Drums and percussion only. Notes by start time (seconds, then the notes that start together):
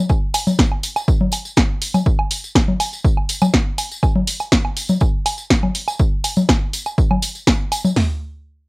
0.09 kick, tambourine, low woodblock
0.34 open hi-hat, tambourine, low woodblock
0.47 tambourine, low conga
0.58 kick, snare, tambourine
0.71 low woodblock
0.83 open hi-hat, tambourine
0.96 tambourine, low woodblock
1.08 kick, tambourine
1.21 low conga
1.32 open hi-hat, tambourine, low woodblock
1.45 tambourine
1.57 kick, snare, tambourine, low woodblock
1.82 open hi-hat, tambourine
1.94 tambourine, low conga, low woodblock
2.06 kick, tambourine
2.19 low woodblock
2.31 open hi-hat, tambourine
2.44 tambourine
2.55 kick, snare, tambourine, low woodblock
2.68 low conga
2.80 open hi-hat, tambourine, low woodblock
2.93 tambourine
3.05 kick, tambourine
3.17 low woodblock
3.29 open hi-hat, tambourine
3.42 tambourine, low conga, low woodblock
3.54 kick, snare, tambourine
3.78 open hi-hat, tambourine, low woodblock
3.92 tambourine
4.03 kick, tambourine, low woodblock
4.16 low conga
4.27 open hi-hat, tambourine
4.40 tambourine, low woodblock
4.52 kick, snare, tambourine
4.65 low woodblock
4.77 open hi-hat, tambourine
4.89 tambourine, low conga
5.00 kick, tambourine, low woodblock
5.26 open hi-hat, tambourine, low woodblock
5.38 tambourine
5.50 kick, snare, tambourine
5.63 low conga, low woodblock
5.75 open hi-hat, tambourine
5.88 tambourine, low woodblock
5.99 kick, tambourine
6.24 open hi-hat, tambourine, low woodblock
6.36 tambourine, low conga
6.49 kick, snare, tambourine, low woodblock
6.73 open hi-hat, tambourine
6.86 tambourine, low woodblock
6.98 kick, tambourine
7.11 low conga, low woodblock
7.22 open hi-hat, tambourine
7.35 tambourine
7.47 kick, snare, tambourine, low woodblock
7.72 open hi-hat, tambourine, low woodblock
7.85 tambourine, low conga
7.96 snare, floor tom, open hi-hat